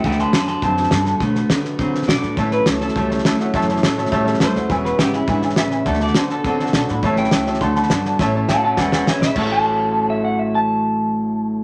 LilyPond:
<<
  \new Staff \with { instrumentName = "Clean electric guitar" } { \time 4/4 \key a \major \tempo 4 = 206 <e'' g''>8 <a'' c'''>8 <a'' c'''>8 <a'' c'''>8 a''2 | r2. d''4 | r8 b'8 a'8 a'4 r4. | r2. c''4 |
r8 b'8 g'8 e'4 r8 e''4~ | e''8 d''8 c''8 a'2 r8 | r8 g''4. c'''8 a''4.~ | a''8 r8 <fis'' a''>8 <fis'' a''>8 <d'' fis''>8 <d'' fis''>8 <cis'' e''>8 e''8 |
r8 a''2 e''8 fis''8 e''8 | a''1 | }
  \new Staff \with { instrumentName = "Upright piano" } { \time 4/4 \key a \major r1 | r1 | <cis'' e'' a''>8 <cis'' e'' b''>8 <cis'' e'' a''>8 <cis'' e'' a''>8 <cis'' e'' a''>8 <cis'' e'' a''>8 <cis'' e'' a''>8 <cis'' e'' fis''>8 | <cis'' e'' a''>8 <cis'' e'' a''>8 <cis'' e'' a''>8 <cis'' e'' a''>8 <cis'' e'' a''>8 <cis'' e'' a''>8 <cis'' e'' a''>8 <cis'' e'' fis''>8 |
<b' e'' gis''>8 <b' e'' fis''>8 <b' e'' fis''>8 <b' e'' gis''>8 <b' e'' gis''>8 <b' e'' gis''>8 <b' e'' gis''>8 <b' e'' gis''>8 | <d'' fis'' a''>8 <d'' fis'' a''>8 <d'' fis'' a''>8 <d'' fis'' a''>8 <d'' fis'' a''>8 <d'' fis'' a''>8 <d'' fis'' a''>8 <d'' fis'' b''>8 | <cis'' e'' a''>8 <cis'' e'' b''>8 <cis'' e'' a''>8 <cis'' e'' a''>8 <d'' fis'' a''>8 <d'' fis'' b''>8 <d'' fis'' a''>8 <d'' fis'' a''>8 | <cis'' e'' a''>8 <cis'' e'' a''>8 <cis'' e'' a''>8 <cis'' e'' a''>8 <b' e'' gis''>8 <b' e'' gis''>8 <b' e'' gis''>8 <b' e'' b''>8 |
<cis'' e'' a''>1~ | <cis'' e'' a''>1 | }
  \new Staff \with { instrumentName = "Steel-string acoustic guitar" } { \time 4/4 \key a \major <d fis a fis' b'>8 <a fis' b'>8 <fis a fis'>8 <a fis' b'>8 <d fis a fis' b'>8 <a fis' b'>8 <fis a fis' b'>8 <a fis' b'>8 | <d fis a fis' b'>8 <a fis' b'>8 <fis a fis' b'>8 <a fis' b'>8 <d fis a fis' b'>8 <a fis' b'>8 <fis a fis' b'>8 <a fis' b'>8 | <a, e fis a cis' a'>8 <fis a cis' a'>8 <fis a cis' a'>8 <fis a cis' a'>8 <a, e fis a cis' a'>8 <fis a cis' a'>8 <fis a cis' a'>8 <fis a cis' a'>8 | <a, e fis a cis' a'>8 <fis a cis' a'>8 <fis a cis' a'>8 <fis a cis' a'>8 <a, e fis a cis' a'>8 <fis a cis' a'>8 <fis a cis' a'>8 <fis a cis' a'>8 |
<e gis b cis' gis'>8 <b cis' gis'>8 <gis b>8 <b cis' gis'>8 <e gis b cis' gis'>8 <b cis' gis'>8 <gis b cis' gis'>8 <b cis' gis'>8 | <d fis b fis' a'>8 <b fis' a'>8 <fis b fis' a'>8 <b fis' a'>8 <d fis b fis' a'>8 <b fis' a'>8 <fis b fis' a'>8 <b fis' a'>8 | <a, e fis a cis' a'>8 <fis a cis' a'>8 <fis a cis' a'>8 <fis a cis' a'>8 <d fis b fis' a'>8 <b fis' a'>8 <fis b fis' a'>8 <b fis' a'>8 | <a, e fis a cis' a'>8 <fis a cis' a'>8 <fis a cis' a'>8 <fis a cis' a'>8 <e gis b cis' gis'>8 <b cis' gis'>8 <gis b cis' gis'>8 <b cis' gis'>8 |
<a, e fis a cis' a'>1~ | <a, e fis a cis' a'>1 | }
  \new Staff \with { instrumentName = "Clean electric guitar" } { \clef bass \time 4/4 \key a \major <d a>4 <d b>4 <d c'>4 <d b>4 | <d a>4 <d b>4 <d c'>4 <d b>4 | <a, e>4 <a, fis>4 <a, g>4 <a, fis>4 | <a, e>4 <a, fis>4 <a, g>4 <a, fis>4 |
<e, b,>4 <e, cis>4 <e, d>4 <e, cis>4 | <d a>4 <d b>4 <d c'>4 <d b>4 | <a, e>4 <a, fis>4 <d a>4 <d b>4 | <a, e>4 <a, fis>4 <e, b,>4 <e, cis>4 |
<a e' fis' cis''>1~ | <a e' fis' cis''>1 | }
  \new Staff \with { instrumentName = "Upright bass" } { \clef bass \time 4/4 \key a \major d,4 fis,4 fis,4 g,4 | b,4 d4 d4 b,8 a,8 | a,,4 cis,4 cis,4 d,4 | fis,4 a,4 a,4 g,8 e,8 |
e,,4 gis,,4 gis,,4 a,,4 | d,4 d4 d4 b,8 a,8 | a,,4 cis,4 d,4 g,4 | a,,4 a,4 e,,4 d,8 b,,8 |
a,,1~ | a,,1 | }
  \new DrumStaff \with { instrumentName = "Drums" } \drummode { \time 4/4 <bd sn>16 sn16 sn8 <hhp sn>8 sn8 <bd sn>8 sn16 sn16 <hhp sn>8 sn8 | <bd sn>8 sn8 <hhp sn>8 sn8 <bd sn>8 sn16 sn16 <hhp sn>8 sn8 | <bd sn>8 sn8 <hhp sn>8 sn16 sn16 <bd sn>8 sn16 sn16 <hhp sn>8 sn8 | <bd sn>16 sn16 sn16 sn16 <hhp sn>8 sn16 sn16 <bd sn>8 sn16 sn16 <hhp sn>8 sn8 |
<bd sn>8 sn8 <hhp sn>8 sn8 <bd sn>8 sn16 sn16 <hhp sn>8 sn8 | <bd sn>16 sn16 sn16 sn16 <hhp sn>8 sn8 <bd sn>8 sn16 sn16 <hhp sn>8 sn8 | <bd sn>8 sn16 sn16 <hhp sn>8 sn16 sn16 <bd sn>8 sn16 sn16 <hhp sn>8 sn8 | <bd sn>4 <hhp sn>4 <bd sn>8 sn8 <hhp sn>8 sn8 |
<cymc bd>4 r4 r4 r4 | r4 r4 r4 r4 | }
>>